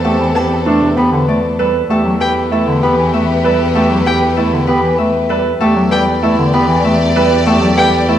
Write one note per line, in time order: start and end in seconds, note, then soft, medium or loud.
0.00 1.80 E2 medium
0.00 1.70 C4 medium
0.00 1.70 A4 medium
0.00 0.34 B4 medium
0.00 1.27 D5 medium
0.04 0.16 A3 medium
0.04 0.25 G4 medium
0.04 0.65 A4 medium
0.20 0.31 E3 medium
0.35 0.55 G4 medium
0.35 0.96 B4 medium
0.35 0.47 A5 medium
0.66 0.78 A3 medium
0.66 0.86 D4 medium
0.66 1.58 A4 medium
0.82 0.93 C3 medium
0.97 1.08 B3 medium
0.97 1.17 G4 medium
0.97 2.19 B4 medium
1.12 1.24 D3 medium
1.28 1.39 A3 medium
1.28 5.18 D5 medium
1.58 1.70 G3 medium
1.58 1.89 A4 medium
1.58 1.79 B4 medium
1.90 5.51 E2 medium
1.90 2.01 A3 medium
1.90 5.41 G4 medium
1.90 2.10 G4 medium
1.90 2.51 A4 medium
1.90 5.41 B4 medium
2.05 2.17 F#3 medium
2.20 2.41 G4 medium
2.20 2.82 B4 medium
2.20 2.33 G5 medium
2.51 2.63 A3 medium
2.51 2.72 E4 medium
2.51 3.44 A4 medium
2.67 2.79 D3 medium
2.83 2.94 B3 medium
2.83 3.03 G4 medium
2.83 4.05 B4 medium
2.98 3.10 E3 medium
3.13 3.25 A3 medium
3.13 4.97 E5 medium
3.44 3.56 G3 medium
3.44 3.74 A4 medium
3.44 3.65 B4 medium
3.75 3.87 A3 medium
3.75 3.96 G4 medium
3.75 4.36 A4 medium
3.91 4.02 F#3 medium
4.06 4.27 G4 medium
4.06 4.66 B4 medium
4.06 4.18 G5 medium
4.37 4.49 A3 medium
4.37 4.57 E4 medium
4.37 5.28 A4 medium
4.53 4.64 D3 medium
4.67 4.80 B3 medium
4.67 4.88 G4 medium
4.67 5.90 B4 medium
4.83 4.95 E3 medium
4.98 5.11 A3 medium
4.98 6.83 E5 medium
5.29 5.42 G3 medium
5.29 5.59 A4 medium
5.29 5.50 B4 medium
5.60 8.19 E2 medium
5.60 5.72 A3 medium
5.60 8.19 G4 medium
5.60 5.81 G4 medium
5.60 6.22 A4 medium
5.60 8.19 D5 medium
5.76 5.88 F#3 medium
5.91 6.03 G3 medium
5.91 6.12 G4 medium
5.91 6.52 B4 medium
5.91 6.03 G5 medium
6.23 6.34 A3 medium
6.23 6.43 E4 medium
6.23 7.14 A4 medium
6.38 6.50 D3 medium
6.53 6.65 B3 medium
6.53 6.74 G4 medium
6.53 7.76 B4 medium
6.69 6.81 E3 medium
6.84 6.96 A3 medium
6.84 8.19 E5 medium
7.15 7.27 G3 medium
7.15 7.46 A4 medium
7.15 7.36 B4 medium
7.46 7.58 A3 medium
7.46 7.67 G4 medium
7.46 8.07 A4 medium
7.61 7.73 F#3 medium
7.77 7.89 G3 medium
7.77 7.98 G4 medium
7.77 8.19 B4 medium
7.77 7.89 G5 medium
8.08 8.19 A3 medium
8.08 8.19 E4 medium
8.08 8.19 A4 medium